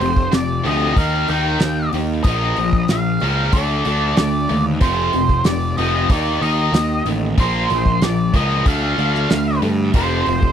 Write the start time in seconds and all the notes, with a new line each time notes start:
Already playing: C5
0.00 F1 F2 C3, open hi-hat
0.16 kick
0.32 F1 F2 C3 D5, snare, open hi-hat
0.64 D2 F2 C3 F3 D#5, open hi-hat
0.96 D#2 D#3 A#3 D#4 F5, kick, open hi-hat
1.28 D#2 D#3 A#3 D#4 G5, open hi-hat
1.60 D#2 D#3 A#3, snare, open hi-hat
1.93 D#2 D#3 A#3, open hi-hat
2.23 A#1 A#2 F3 A#3 D#5, kick, open hi-hat
2.57 A#1 A#2 F3, open hi-hat
2.73 kick
2.88 A#1 A#2 F3 F5, snare, open hi-hat
3.20 C#2 A#2 F3 A#3, open hi-hat
3.53 D2 D3 A3 D4 D5, kick, open hi-hat
3.85 D2 D3 A3 D4, open hi-hat
4.17 D2 D3 A3 D5, snare, open hi-hat
4.49 D#2 D3 A3, open hi-hat
4.81 F1 F2 C3 F3 C5, kick, open hi-hat
5.13 F1 F2 C3, open hi-hat
5.29 kick
5.44 F1 F2 C3 D5, snare, open hi-hat
5.77 F1 F2 C3 F3 D#5, open hi-hat
6.10 D#2 D#3 A#3 D#4 D5, kick, open hi-hat
6.41 D#2 D#3 A#3 D#4 D#5, open hi-hat
6.73 D#2 D#3 A#3, snare, open hi-hat
7.06 A1 D#3 A#3, open hi-hat
7.38 A#1 A#2 F3 A#3 C5, kick, open hi-hat
7.70 A#1 A#2 F3, open hi-hat
7.86 kick
8.02 A#1 A#2 F3 D5, snare, open hi-hat
8.33 C#2 A#2 F3 A#3 D#5, kick, open hi-hat
8.65 D2 D3 A3 D4 F5, kick, open hi-hat
8.98 D2 D3 A3 D4, open hi-hat
9.15 snare
9.30 D2 D3 A3, snare, open hi-hat
9.62 G2 D3 A3, open hi-hat
9.94 F1 F2 C3 F3 C5, kick, open hi-hat
10.26 F1 F2 C3, open hi-hat
10.42 kick